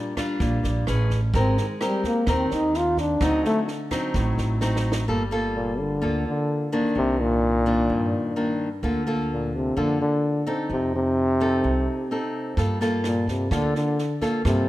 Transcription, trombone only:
0, 0, Header, 1, 2, 480
1, 0, Start_track
1, 0, Tempo, 468019
1, 1375, Time_signature, 4, 2, 24, 8
1, 15065, End_track
2, 0, Start_track
2, 0, Title_t, "Trombone"
2, 0, Program_c, 0, 57
2, 1420, Note_on_c, 0, 60, 79
2, 1622, Note_off_c, 0, 60, 0
2, 1635, Note_on_c, 0, 51, 48
2, 1799, Note_off_c, 0, 51, 0
2, 1894, Note_on_c, 0, 55, 75
2, 2111, Note_off_c, 0, 55, 0
2, 2117, Note_on_c, 0, 58, 82
2, 2377, Note_on_c, 0, 60, 81
2, 2392, Note_off_c, 0, 58, 0
2, 2603, Note_on_c, 0, 63, 94
2, 2619, Note_off_c, 0, 60, 0
2, 2851, Note_on_c, 0, 65, 99
2, 2866, Note_off_c, 0, 63, 0
2, 3073, Note_off_c, 0, 65, 0
2, 3077, Note_on_c, 0, 62, 85
2, 3331, Note_on_c, 0, 63, 86
2, 3347, Note_off_c, 0, 62, 0
2, 3549, Note_off_c, 0, 63, 0
2, 3555, Note_on_c, 0, 57, 99
2, 3693, Note_off_c, 0, 57, 0
2, 5704, Note_on_c, 0, 46, 81
2, 5947, Note_on_c, 0, 50, 90
2, 5962, Note_off_c, 0, 46, 0
2, 6421, Note_off_c, 0, 50, 0
2, 6437, Note_on_c, 0, 50, 86
2, 6873, Note_off_c, 0, 50, 0
2, 7155, Note_on_c, 0, 48, 102
2, 7398, Note_on_c, 0, 46, 108
2, 7413, Note_off_c, 0, 48, 0
2, 8827, Note_off_c, 0, 46, 0
2, 9572, Note_on_c, 0, 46, 80
2, 9803, Note_on_c, 0, 48, 84
2, 9818, Note_off_c, 0, 46, 0
2, 10040, Note_on_c, 0, 50, 97
2, 10055, Note_off_c, 0, 48, 0
2, 10264, Note_off_c, 0, 50, 0
2, 10270, Note_on_c, 0, 50, 81
2, 10710, Note_off_c, 0, 50, 0
2, 10997, Note_on_c, 0, 48, 95
2, 11211, Note_off_c, 0, 48, 0
2, 11238, Note_on_c, 0, 48, 117
2, 12628, Note_off_c, 0, 48, 0
2, 13404, Note_on_c, 0, 46, 80
2, 13616, Note_off_c, 0, 46, 0
2, 13642, Note_on_c, 0, 48, 82
2, 13873, Note_on_c, 0, 50, 97
2, 13888, Note_off_c, 0, 48, 0
2, 14106, Note_off_c, 0, 50, 0
2, 14115, Note_on_c, 0, 50, 86
2, 14555, Note_off_c, 0, 50, 0
2, 14831, Note_on_c, 0, 48, 99
2, 15065, Note_off_c, 0, 48, 0
2, 15065, End_track
0, 0, End_of_file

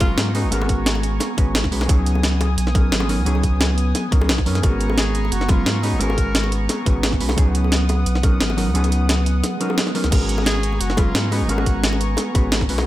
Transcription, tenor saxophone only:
0, 0, Header, 1, 2, 480
1, 0, Start_track
1, 0, Key_signature, 5, "minor"
1, 0, Tempo, 342857
1, 728, Time_signature, 4, 2, 24, 8
1, 18011, End_track
2, 0, Start_track
2, 0, Title_t, "Tenor saxophone"
2, 0, Program_c, 0, 66
2, 10, Note_on_c, 0, 65, 108
2, 456, Note_off_c, 0, 65, 0
2, 493, Note_on_c, 0, 63, 90
2, 730, Note_on_c, 0, 66, 97
2, 751, Note_off_c, 0, 63, 0
2, 1449, Note_off_c, 0, 66, 0
2, 6970, Note_on_c, 0, 68, 94
2, 7449, Note_on_c, 0, 66, 102
2, 7470, Note_off_c, 0, 68, 0
2, 7686, Note_on_c, 0, 65, 102
2, 7707, Note_off_c, 0, 66, 0
2, 8163, Note_on_c, 0, 63, 96
2, 8184, Note_off_c, 0, 65, 0
2, 8404, Note_on_c, 0, 70, 113
2, 8425, Note_off_c, 0, 63, 0
2, 9126, Note_off_c, 0, 70, 0
2, 14651, Note_on_c, 0, 68, 118
2, 15130, Note_on_c, 0, 66, 109
2, 15151, Note_off_c, 0, 68, 0
2, 15369, Note_on_c, 0, 65, 108
2, 15390, Note_off_c, 0, 66, 0
2, 15850, Note_on_c, 0, 63, 92
2, 15871, Note_off_c, 0, 65, 0
2, 16092, Note_on_c, 0, 66, 100
2, 16113, Note_off_c, 0, 63, 0
2, 16810, Note_off_c, 0, 66, 0
2, 18011, End_track
0, 0, End_of_file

